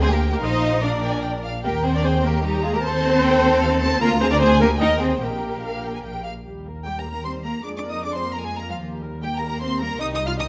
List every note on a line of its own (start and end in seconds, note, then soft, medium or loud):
0.00 0.38 D2 loud
0.00 0.04 C4 loud
0.00 0.11 G#4 loud
0.00 0.06 C5 loud
0.00 0.41 G5 medium
0.10 0.29 A#3 medium
0.10 0.31 G4 loud
0.10 0.31 A#4 medium
0.31 0.41 A#3 medium
0.31 0.36 G4 medium
0.31 0.42 A#4 loud
0.41 1.42 A#1 medium
0.41 0.81 D#4 loud
0.41 0.81 C5 loud
0.41 0.83 D#5 loud
0.41 0.81 F5 medium
0.82 1.44 D4 medium
0.82 1.44 A#4 medium
0.82 1.44 D5 medium
0.82 0.91 F5 medium
1.02 1.13 G5 medium
1.13 1.23 G#5 medium
1.22 1.30 G5 medium
1.43 1.63 F5 medium
1.63 2.80 D#2 medium
1.63 1.72 A#3 loud
1.63 1.83 G4 medium
1.63 1.83 A#4 medium
1.63 2.01 G5 medium
1.84 1.94 C4 medium
1.84 1.94 G#4 medium
1.84 1.95 C5 loud
1.94 2.04 D4 medium
1.94 2.04 A#4 medium
1.94 2.05 D5 loud
2.04 2.24 C4 loud
2.04 2.12 G#4 loud
2.04 2.25 C5 loud
2.04 2.43 G5 medium
2.24 2.45 A#3 loud
2.24 2.44 G4 medium
2.24 2.45 A#4 loud
2.44 2.64 G3 medium
2.44 2.64 D#4 loud
2.44 2.64 G4 loud
2.44 2.83 A#5 medium
2.63 2.74 G#3 loud
2.63 2.74 F4 medium
2.63 2.74 G#4 loud
2.73 2.84 A#3 medium
2.73 2.77 G4 medium
2.73 2.85 A#4 loud
2.83 3.99 D#2 medium
2.83 3.99 C4 loud
2.83 3.99 A4 loud
2.83 4.02 C5 loud
2.83 3.23 A5 medium
3.23 3.62 G5 medium
3.61 3.69 F5 medium
3.80 4.00 A5 loud
4.01 4.79 D2 loud
4.01 4.09 A#3 loud
4.01 4.21 F4 loud
4.01 4.09 A#4 loud
4.01 4.41 A#5 loud
4.21 4.31 C4 medium
4.21 4.26 G#4 loud
4.21 4.25 C5 loud
4.31 4.35 D4 loud
4.31 4.35 A#4 loud
4.31 4.41 D5 loud
4.40 4.48 C4 loud
4.40 4.61 G#4 loud
4.40 4.60 C5 loud
4.40 4.80 G#5 loud
4.60 4.68 A#3 loud
4.60 4.69 G4 loud
4.60 4.68 A#4 loud
4.80 5.21 D#2 loud
4.80 4.89 D#4 loud
4.80 5.00 A#4 medium
4.80 5.00 D#5 loud
4.80 5.19 G5 medium
5.00 5.21 C4 medium
5.00 5.21 G#4 medium
5.00 5.21 C5 medium
5.20 6.03 A#1 medium
5.20 6.24 A#3 medium
5.20 6.23 G4 medium
5.20 6.26 A#4 medium
5.20 5.57 G5 medium
5.62 5.82 F5 medium
5.84 5.94 G5 medium
5.94 5.98 G#5 medium
6.03 6.25 A#1 medium
6.03 6.24 G5 medium
6.24 6.32 F5 medium
6.46 7.61 D#2 soft
6.46 6.65 G3 soft
6.46 6.65 G4 soft
6.67 6.87 A#3 soft
6.67 6.86 A#4 soft
6.85 6.91 G3 medium
6.85 7.06 G3 soft
6.85 6.91 G4 medium
6.85 7.06 G4 soft
6.85 6.97 G5 medium
6.98 7.04 A#3 soft
6.98 7.04 A#4 medium
6.98 7.10 A#5 medium
7.05 7.25 A#3 soft
7.05 7.26 A#4 soft
7.11 7.17 A#3 medium
7.11 7.25 A#4 medium
7.11 7.25 A#5 medium
7.24 7.44 G3 soft
7.24 7.33 C4 medium
7.24 7.44 G4 soft
7.24 7.45 C5 medium
7.24 7.32 C6 medium
7.44 7.65 A#3 medium
7.44 7.65 A#3 soft
7.44 7.65 A#4 soft
7.44 7.53 A#4 soft
7.44 7.64 A#5 medium
7.63 8.82 F2 medium
7.63 7.83 G#3 soft
7.63 7.70 D4 medium
7.63 7.83 G#4 soft
7.63 7.76 D5 medium
7.63 7.69 D6 medium
7.77 7.83 D4 medium
7.77 7.91 D5 medium
7.77 7.83 D6 medium
7.85 8.05 A#3 soft
7.85 8.05 A#4 soft
7.90 8.04 D#4 medium
7.90 8.05 D#5 medium
7.90 8.04 D#6 medium
8.03 8.25 G#3 soft
8.03 8.14 D4 medium
8.03 8.25 G#4 soft
8.03 8.15 D5 medium
8.03 8.14 D6 medium
8.14 8.34 C4 medium
8.14 8.35 C5 medium
8.14 8.34 C6 medium
8.24 8.44 A#3 soft
8.24 8.44 A#4 soft
8.34 8.44 A#3 medium
8.34 8.44 A#4 medium
8.34 8.44 A#5 medium
8.43 8.57 G#3 medium
8.43 8.63 G#3 soft
8.43 8.58 G#4 medium
8.43 8.63 G#4 soft
8.43 8.57 G#5 medium
8.57 8.71 A#3 medium
8.57 8.70 A#4 medium
8.57 8.71 A#5 medium
8.63 8.81 A#3 soft
8.63 8.84 A#4 soft
8.70 8.84 F3 medium
8.70 8.84 F4 medium
8.70 8.76 F5 medium
8.82 9.98 D#2 medium
8.82 9.01 A#3 medium
8.82 9.01 G4 medium
9.02 9.23 G3 soft
9.02 9.23 A#4 soft
9.22 9.29 G3 medium
9.22 9.42 A#3 medium
9.22 9.42 G4 medium
9.22 9.28 G4 medium
9.22 9.35 G5 medium
9.36 9.48 A#3 medium
9.36 9.47 A#4 medium
9.36 9.47 A#5 medium
9.41 9.61 G3 medium
9.41 9.61 A#4 medium
9.48 9.62 A#3 medium
9.48 9.61 A#4 medium
9.48 9.62 A#5 medium
9.61 9.80 A#3 medium
9.61 9.81 C4 medium
9.61 9.80 G4 medium
9.61 9.69 C5 medium
9.61 9.81 C6 medium
9.80 10.01 G3 medium
9.80 10.01 A#3 medium
9.80 10.00 A#4 medium
9.80 10.00 A#5 loud
10.00 10.48 C2 medium
10.00 10.19 D#3 medium
10.00 10.12 D#4 medium
10.00 10.18 G4 medium
10.00 10.12 D#5 medium
10.00 10.06 D#6 loud
10.13 10.19 D#4 medium
10.13 10.26 D#5 medium
10.13 10.20 D#6 medium
10.19 10.39 G3 medium
10.19 10.39 D#4 medium
10.26 10.31 F4 medium
10.26 10.40 F5 loud
10.26 10.32 F6 medium
10.39 10.48 D#3 medium
10.39 10.43 D#4 medium
10.39 10.48 G4 medium
10.39 10.48 D#5 medium
10.39 10.44 D#6 loud